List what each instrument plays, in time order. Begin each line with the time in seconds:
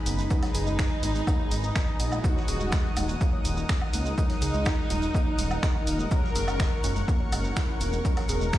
Already playing: synth stab G#2 D#3 B3, ambient pad D#4 B4 G#5, analog synth pad G#4 B4 D#5 B5
0.06 detuned saw bass F#1, synth pluck B3, analog synth lead D#4, violin section D#4, open hi-hat, shaker
0.18 synth pluck G#3, closed hi-hat, shaker
0.30 synth stab G#2 D#3 B3, synth pluck G#3, analog synth pad A#5, kick, shaker
0.43 synth pluck F#3, snare, open hi-hat, low woodblock
0.54 detuned saw bass F#1, synth pluck G#4, open hi-hat, shaker
0.67 detuned saw bass F#1, synth pluck G#3, shaker
0.79 synth pluck G#3, finger snap, kick, snare, shaker
0.91 synth pluck D#4
1.03 detuned saw bass G#1, synth stab G#2 D#3 B3, synth pluck G#3, open hi-hat, shaker
1.15 synth pluck G#3, closed hi-hat, shaker
1.27 synth pluck A#3, kick, low woodblock, shaker
1.39 synth pluck F#3
1.51 detuned saw bass G#1, synth pluck G#3, open hi-hat, shaker
1.63 synth pluck D#4, shaker
1.76 synth pluck D#4, finger snap, kick, snare, shaker
1.88 synth pluck D#4
2.00 detuned saw bass A#1, synth pluck B3, open hi-hat, shaker
2.12 synth pluck G#3, low woodblock, shaker
2.24 synth stab A#2 F#3 D#4, synth pluck G#3, violin section F#4, analog synth lead F#4, analog synth pad A#4 F#5 D#6, kick, shaker
2.36 synth pluck F#3, snare
2.48 detuned saw bass D#1, synth pluck G#4, open hi-hat, shaker
2.56 ambient pad F#5, shaker
2.60 detuned saw bass D#1, synth pluck G#3, ambient pad A#4
2.72 synth pluck G#3, finger snap, kick, snare, shaker
2.85 synth pluck D#4
2.96 detuned saw bass D#1, synth stab A#2 F#3 D#4, synth pluck G#3, open hi-hat, low woodblock, shaker
3.09 synth pluck G#3, closed hi-hat, shaker
3.21 synth pluck A#3, kick, shaker
3.33 synth pluck F#3
3.45 detuned saw bass D#1, synth pluck G#3, open hi-hat, shaker
3.57 synth pluck D#4, shaker
3.69 synth pluck D#4, finger snap, kick, snare, shaker
3.81 synth pluck D#4, low woodblock
3.93 detuned saw bass C#2, synth pluck A#3, violin section D#4, analog synth lead D#4, open hi-hat, shaker
4.06 synth pluck G#3, closed hi-hat, shaker
4.18 synth stab A#2 F#3 D#4, synth pluck G#3, kick, shaker
4.30 synth pluck F#3, snare, open hi-hat
4.41 detuned saw bass C#2, synth pluck G#4, open hi-hat, shaker
4.54 detuned saw bass C#2, synth pluck G#3, shaker
4.65 finger snap, kick, snare, low woodblock, shaker
4.78 synth pluck D#4
4.90 detuned saw bass D#1, synth stab A#2 F#3 D#4, synth pluck G#3, open hi-hat, shaker
5.02 synth pluck G#3, closed hi-hat, shaker
5.14 synth pluck A#3, kick, shaker
5.27 synth pluck F#3
5.38 detuned saw bass D#1, synth pluck G#3, open hi-hat, shaker
5.51 synth pluck D#4, low woodblock, shaker
5.63 synth pluck D#4, finger snap, kick, snare, shaker
5.75 synth stab A#2 F#3 D#4, synth pluck D#4
5.87 detuned saw bass D#1, synth pluck A#3, open hi-hat, shaker
5.99 synth pluck G#3, shaker
6.11 synth stab A#2 F#3 C#4, synth pluck G#3, ambient pad C#4, analog synth lead A#4, violin section A#4, analog synth pad C#5 C#6, kick, shaker
6.23 synth pluck F#3, snare
6.35 detuned saw bass F#1, synth pluck G#4, open hi-hat, shaker
6.48 detuned saw bass F#1, synth pluck G#3, low woodblock, shaker
6.60 synth pluck G#3, finger snap, kick, snare, shaker
6.72 synth pluck D#4
6.83 detuned saw bass F#1, synth stab A#2 F#3 C#4, synth pluck G#3, open hi-hat, shaker
6.96 synth pluck G#3, closed hi-hat, shaker
7.08 synth pluck A#3, kick, shaker
7.20 synth pluck F#3
7.32 detuned saw bass F#1, synth pluck G#3, open hi-hat, low woodblock, shaker
7.44 synth pluck D#4, shaker
7.56 synth pluck E4, finger snap, kick, snare, shaker
7.68 synth pluck E4
7.80 detuned saw bass E1, synth pluck A#3, violin section A#4, analog synth lead A#4, open hi-hat, shaker
7.93 synth pluck G#3, closed hi-hat, shaker
8.05 synth stab A#2 F#3 C#4, synth pluck G#3, kick, shaker
8.17 synth pluck F#3, snare, open hi-hat, low woodblock
8.28 detuned saw bass E1, synth pluck G#4, open hi-hat, shaker
8.41 detuned saw bass E1, synth pluck G#3, shaker
8.53 synth pluck G#3, finger snap, kick, snare, shaker